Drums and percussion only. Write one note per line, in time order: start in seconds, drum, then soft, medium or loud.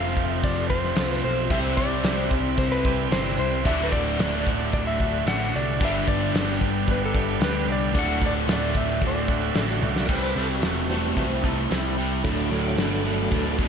0.17 kick medium
0.17 tambourine medium
0.44 kick loud
0.44 tambourine soft
0.44 crash medium
0.70 kick medium
0.70 tambourine soft
0.84 snare soft
0.95 snare loud
0.95 tambourine medium
0.95 crash medium
1.11 snare soft
1.24 tambourine medium
1.50 kick loud
1.50 tambourine medium
1.50 crash medium
1.77 kick medium
2.03 snare loud
2.03 tambourine medium
2.03 crash medium
2.31 kick medium
2.31 tambourine medium
2.57 kick medium
2.57 tambourine soft
2.57 crash medium
2.85 kick medium
2.85 tambourine soft
3.11 snare loud
3.11 tambourine medium
3.11 crash medium
3.38 tambourine medium
3.65 kick loud
3.65 tambourine medium
3.65 crash medium
3.92 kick medium
3.92 tambourine medium
4.19 snare loud
4.19 tambourine medium
4.19 crash medium
4.47 kick medium
4.47 tambourine medium
4.73 kick loud
4.73 tambourine soft
4.73 crash medium
5.00 kick medium
5.00 tambourine soft
5.27 snare loud
5.27 tambourine loud
5.27 crash medium
5.54 tambourine medium
5.80 kick loud
5.80 tambourine medium
5.80 crash medium
6.07 kick medium
6.07 tambourine medium
6.34 snare loud
6.34 tambourine medium
6.34 crash medium
6.61 kick medium
6.61 tambourine medium
6.87 kick loud
6.87 tambourine soft
6.87 crash medium
7.13 kick loud
7.13 tambourine soft
7.40 snare loud
7.40 tambourine loud
7.40 crash medium
7.67 tambourine medium
7.94 kick loud
7.94 tambourine loud
7.94 crash medium
8.20 kick medium
8.20 tambourine medium
8.47 snare loud
8.47 tambourine loud
8.47 crash medium
8.75 kick medium
8.75 tambourine medium
9.01 kick loud
9.01 crash medium
9.28 kick medium
9.28 tambourine soft
9.54 snare loud
9.54 tambourine medium
9.54 crash medium
9.70 snare soft
9.83 high tom medium
9.83 tambourine medium
9.96 snare medium
10.08 kick loud
10.08 crash loud
10.36 open hi-hat medium
10.62 snare loud
10.62 open hi-hat medium
10.90 open hi-hat medium
11.17 kick loud
11.17 open hi-hat medium
11.44 kick medium
11.44 open hi-hat medium
11.71 snare loud
11.71 open hi-hat medium
11.99 open hi-hat medium
12.24 kick loud
12.24 open hi-hat medium
12.51 open hi-hat medium
12.77 snare loud
12.77 open hi-hat medium
13.05 open hi-hat medium
13.31 kick loud
13.31 open hi-hat medium
13.58 kick medium
13.58 open hi-hat medium